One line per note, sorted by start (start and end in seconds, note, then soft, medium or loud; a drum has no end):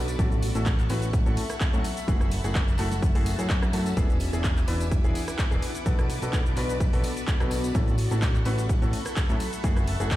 0.00 0.17 B1 loud
0.00 0.86 B3 medium
0.00 0.86 F#4 medium
0.00 0.17 B4 medium
0.00 0.19 D5 medium
0.00 0.17 A5 medium
0.00 0.15 D6 medium
0.08 closed hi-hat medium
0.08 tambourine medium
0.08 cabasa medium
0.19 0.53 A1 loud
0.19 0.35 A2 medium
0.19 0.35 C#4 medium
0.19 0.35 E4 medium
0.19 0.35 F#4 medium
0.19 0.35 A4 loud
0.19 1.83 A4 medium
0.19 2.61 A4 medium
0.19 3.93 F#5 medium
0.19 1.83 C#6 medium
0.19 kick loud
0.19 closed hi-hat medium
0.19 tambourine soft
0.19 high conga medium
0.19 cabasa medium
0.32 closed hi-hat soft
0.32 cabasa soft
0.39 2.70 E5 medium
0.39 open hi-hat loud
0.39 tambourine loud
0.55 0.88 A1 loud
0.55 0.70 A2 medium
0.55 0.70 C#4 medium
0.55 0.70 E4 medium
0.55 0.70 F#4 medium
0.55 0.70 A4 medium
0.55 2.70 C#6 medium
0.55 closed hi-hat medium
0.55 tambourine medium
0.55 cabasa medium
0.66 2.52 B5 medium
0.66 kick loud
0.66 clap loud
0.66 closed hi-hat medium
0.66 tambourine soft
0.66 cabasa medium
0.79 clap soft
0.79 closed hi-hat soft
0.79 cabasa soft
0.90 1.24 A1 loud
0.90 1.06 A2 medium
0.90 1.06 C#4 medium
0.90 1.06 E4 medium
0.90 1.06 F#4 medium
0.90 1.06 B4 loud
0.90 open hi-hat loud
0.90 tambourine medium
1.02 closed hi-hat medium
1.02 tambourine medium
1.02 cabasa medium
1.13 kick loud
1.13 closed hi-hat medium
1.13 tambourine soft
1.13 cabasa medium
1.26 1.38 A1 loud
1.26 1.41 A2 medium
1.26 1.41 C#4 medium
1.26 1.41 E4 medium
1.26 1.41 F#4 medium
1.26 1.41 A4 medium
1.26 closed hi-hat soft
1.26 cabasa soft
1.37 open hi-hat loud
1.37 tambourine medium
1.49 cross-stick medium
1.49 closed hi-hat medium
1.49 tambourine medium
1.49 cabasa medium
1.61 kick loud
1.61 clap loud
1.61 closed hi-hat medium
1.61 tambourine soft
1.61 cabasa medium
1.73 1.81 A2 loud
1.73 1.83 F#3 medium
1.73 1.83 C#4 medium
1.73 1.83 E4 medium
1.73 1.83 F#4 medium
1.73 1.83 A4 medium
1.73 closed hi-hat soft
1.73 cabasa soft
1.84 4.63 F#4 medium
1.84 5.59 E5 medium
1.84 3.95 A5 medium
1.84 open hi-hat loud
1.84 tambourine loud
1.97 closed hi-hat soft
1.97 tambourine medium
1.97 cabasa medium
2.08 2.42 F#1 loud
2.08 2.24 A3 medium
2.08 2.24 E4 medium
2.08 2.24 F#4 medium
2.08 2.24 G#4 loud
2.08 kick loud
2.08 closed hi-hat soft
2.08 tambourine soft
2.08 high conga medium
2.08 cabasa medium
2.20 4.62 C#4 medium
2.20 cross-stick medium
2.20 closed hi-hat soft
2.20 cabasa soft
2.31 open hi-hat loud
2.31 tambourine loud
2.44 2.77 F#1 loud
2.44 2.59 A3 medium
2.44 2.59 E4 medium
2.44 2.59 F#4 medium
2.44 2.59 G#4 medium
2.44 closed hi-hat medium
2.44 tambourine medium
2.44 cabasa medium
2.55 kick loud
2.55 clap loud
2.55 closed hi-hat medium
2.55 cabasa medium
2.68 closed hi-hat soft
2.68 cabasa soft
2.78 3.13 F#1 loud
2.78 2.95 A3 medium
2.78 2.95 E4 medium
2.78 2.95 F#4 medium
2.78 2.95 A4 loud
2.78 clap soft
2.78 open hi-hat loud
2.78 tambourine medium
2.91 closed hi-hat soft
2.91 tambourine medium
2.91 high conga medium
2.91 cabasa medium
3.02 kick loud
3.02 closed hi-hat medium
3.02 tambourine soft
3.02 cabasa medium
3.15 3.36 F#1 loud
3.15 3.30 A3 medium
3.15 3.30 E4 medium
3.15 3.30 F#4 medium
3.15 3.30 G#4 medium
3.15 open hi-hat medium
3.15 cabasa soft
3.26 open hi-hat loud
3.26 tambourine loud
3.39 3.71 F#2 loud
3.39 3.54 A3 medium
3.39 3.54 E4 medium
3.39 3.54 F#4 medium
3.39 3.54 G#4 medium
3.39 closed hi-hat medium
3.39 tambourine medium
3.39 cabasa medium
3.49 kick loud
3.49 clap loud
3.49 closed hi-hat medium
3.49 tambourine soft
3.49 cabasa medium
3.62 cross-stick medium
3.62 closed hi-hat soft
3.62 cabasa soft
3.73 3.95 F#2 loud
3.73 3.89 A3 medium
3.73 3.89 E4 medium
3.73 3.89 F#4 medium
3.73 3.89 A4 medium
3.73 open hi-hat loud
3.73 tambourine medium
3.86 closed hi-hat medium
3.86 tambourine medium
3.86 cabasa medium
3.97 4.31 E1 loud
3.97 4.13 E3 medium
3.97 4.13 B3 medium
3.97 4.13 D4 medium
3.97 6.48 E4 loud
3.97 4.13 E4 medium
3.97 4.13 G#4 loud
3.97 5.61 G#5 medium
3.97 7.71 D6 medium
3.97 kick loud
3.97 closed hi-hat soft
3.97 tambourine soft
3.97 high conga medium
3.97 cabasa medium
4.10 closed hi-hat soft
4.10 cabasa soft
4.14 6.39 B4 medium
4.20 6.48 F#5 medium
4.20 open hi-hat loud
4.20 tambourine loud
4.33 4.66 E1 medium
4.33 4.48 E3 medium
4.33 4.48 B3 medium
4.33 4.48 D4 medium
4.33 4.48 E4 medium
4.33 4.48 G#4 medium
4.33 closed hi-hat soft
4.33 tambourine medium
4.33 cabasa medium
4.44 kick loud
4.44 clap loud
4.44 closed hi-hat medium
4.44 tambourine soft
4.44 cabasa medium
4.57 clap soft
4.57 closed hi-hat soft
4.57 cabasa soft
4.68 5.02 E1 loud
4.68 4.84 E3 medium
4.68 4.84 B3 medium
4.68 4.84 D4 medium
4.68 4.84 E4 medium
4.68 4.84 B4 loud
4.68 open hi-hat loud
4.68 tambourine medium
4.81 closed hi-hat soft
4.81 tambourine medium
4.81 cabasa medium
4.91 kick loud
4.91 closed hi-hat medium
4.91 cabasa medium
5.04 5.16 E1 loud
5.04 5.19 E3 medium
5.04 5.19 B3 medium
5.04 5.19 D4 medium
5.04 5.19 E4 medium
5.04 5.19 G#4 medium
5.04 closed hi-hat soft
5.04 cabasa soft
5.15 open hi-hat loud
5.15 tambourine medium
5.28 cross-stick medium
5.28 closed hi-hat soft
5.28 tambourine soft
5.28 cabasa medium
5.38 kick loud
5.38 clap loud
5.38 closed hi-hat soft
5.38 tambourine soft
5.38 cabasa medium
5.51 5.59 E1 loud
5.51 5.61 B2 medium
5.51 5.61 B3 medium
5.51 5.61 D4 medium
5.51 5.61 E4 medium
5.51 5.61 G#4 medium
5.51 closed hi-hat soft
5.51 cabasa soft
5.62 8.41 B3 medium
5.62 7.73 B4 medium
5.62 7.73 A5 medium
5.62 open hi-hat loud
5.62 tambourine loud
5.74 closed hi-hat medium
5.74 tambourine medium
5.74 cabasa medium
5.86 6.20 B1 medium
5.86 6.02 B2 medium
5.86 6.02 B3 medium
5.86 6.02 D4 medium
5.86 6.02 F#4 medium
5.86 6.02 A4 loud
5.86 kick loud
5.86 closed hi-hat medium
5.86 tambourine soft
5.86 high conga medium
5.86 cabasa medium
5.93 7.75 D5 medium
5.99 cross-stick medium
5.99 closed hi-hat soft
5.99 cabasa soft
6.07 8.41 F#4 medium
6.07 open hi-hat loud
6.07 tambourine loud
6.22 6.55 B1 loud
6.22 6.37 B2 medium
6.22 6.37 B3 medium
6.22 6.37 D4 medium
6.22 6.37 F#4 medium
6.22 6.37 A4 medium
6.22 closed hi-hat medium
6.22 tambourine soft
6.22 cabasa medium
6.33 kick loud
6.33 clap loud
6.33 closed hi-hat medium
6.33 tambourine soft
6.33 cabasa medium
6.46 closed hi-hat soft
6.46 cabasa soft
6.57 6.91 B1 loud
6.57 6.73 B2 medium
6.57 6.73 B3 medium
6.57 6.73 D4 medium
6.57 6.73 F#4 medium
6.57 6.73 B4 loud
6.57 clap soft
6.57 open hi-hat loud
6.57 tambourine medium
6.69 closed hi-hat medium
6.69 tambourine medium
6.69 cabasa medium
6.80 kick loud
6.80 closed hi-hat medium
6.80 tambourine soft
6.80 cabasa medium
6.93 7.05 B1 loud
6.93 7.08 B2 medium
6.93 7.08 B3 medium
6.93 7.08 D4 medium
6.93 7.08 F#4 medium
6.93 7.08 A4 loud
6.93 open hi-hat medium
6.93 cabasa soft
7.04 open hi-hat loud
7.04 tambourine loud
7.17 closed hi-hat medium
7.17 tambourine medium
7.17 cabasa medium
7.27 kick loud
7.27 clap loud
7.27 closed hi-hat medium
7.27 tambourine soft
7.27 cabasa medium
7.40 7.73 B1 loud
7.40 7.55 B2 medium
7.40 7.55 B3 medium
7.40 7.55 D4 medium
7.40 7.55 F#4 medium
7.40 7.55 A4 medium
7.40 cross-stick medium
7.40 closed hi-hat soft
7.40 cabasa soft
7.51 open hi-hat loud
7.51 tambourine loud
7.64 closed hi-hat medium
7.64 tambourine medium
7.64 cabasa medium
7.74 8.09 A1 loud
7.74 7.91 A2 medium
7.74 7.91 C#4 medium
7.74 7.91 E4 medium
7.74 7.91 F#4 medium
7.74 7.91 A4 loud
7.74 10.16 A4 medium
7.74 10.16 F#5 medium
7.74 9.39 C#6 medium
7.74 kick loud
7.74 closed hi-hat medium
7.74 tambourine soft
7.74 high conga medium
7.74 cabasa medium
7.85 10.12 B5 medium
7.85 closed hi-hat soft
7.85 cabasa soft
7.92 10.16 E5 medium
7.92 10.16 C#6 medium
7.98 open hi-hat loud
7.98 tambourine loud
8.10 8.44 A1 loud
8.10 8.26 A2 medium
8.10 8.26 C#4 medium
8.10 8.26 E4 medium
8.10 8.26 F#4 medium
8.10 8.26 A4 medium
8.10 closed hi-hat medium
8.10 tambourine medium
8.10 cabasa medium
8.22 kick loud
8.22 clap loud
8.22 closed hi-hat medium
8.22 tambourine soft
8.22 cabasa medium
8.35 clap soft
8.35 closed hi-hat soft
8.35 cabasa soft
8.45 8.79 A1 loud
8.45 8.62 A2 medium
8.45 8.62 C#4 medium
8.45 8.62 E4 medium
8.45 8.62 F#4 medium
8.45 8.62 B4 loud
8.45 open hi-hat loud
8.45 tambourine medium
8.58 closed hi-hat medium
8.58 tambourine soft
8.58 cabasa medium
8.69 kick loud
8.69 closed hi-hat medium
8.69 tambourine soft
8.69 cabasa medium
8.82 8.94 A1 loud
8.82 8.97 A2 medium
8.82 8.97 C#4 medium
8.82 8.97 E4 medium
8.82 8.97 F#4 medium
8.82 8.97 A4 medium
8.82 closed hi-hat soft
8.82 cabasa soft
8.93 open hi-hat loud
8.93 tambourine medium
9.05 cross-stick medium
9.05 closed hi-hat medium
9.05 tambourine soft
9.05 cabasa medium
9.16 kick loud
9.16 clap loud
9.16 closed hi-hat medium
9.16 tambourine soft
9.16 cabasa medium
9.29 9.37 A2 loud
9.29 9.39 F#3 medium
9.29 9.39 C#4 medium
9.29 9.39 E4 medium
9.29 9.39 F#4 medium
9.29 9.39 A4 medium
9.29 closed hi-hat soft
9.29 cabasa soft
9.40 10.16 F#4 medium
9.40 10.16 E5 medium
9.40 open hi-hat loud
9.40 tambourine medium
9.53 closed hi-hat medium
9.53 tambourine soft
9.53 cabasa medium
9.63 9.98 F#1 loud
9.63 9.80 A3 medium
9.63 9.80 E4 medium
9.63 9.80 F#4 medium
9.63 9.80 G#4 loud
9.63 kick loud
9.63 closed hi-hat medium
9.63 tambourine soft
9.63 high conga medium
9.63 cabasa medium
9.77 cross-stick medium
9.77 closed hi-hat soft
9.77 cabasa soft
9.87 open hi-hat loud
9.87 tambourine medium
10.00 10.16 F#1 loud
10.00 10.15 A3 medium
10.00 10.15 E4 medium
10.00 10.15 F#4 medium
10.00 10.15 G#4 medium
10.00 closed hi-hat medium
10.00 tambourine medium
10.00 cabasa medium
10.11 kick loud
10.11 clap loud
10.11 closed hi-hat medium
10.11 tambourine soft
10.11 cabasa medium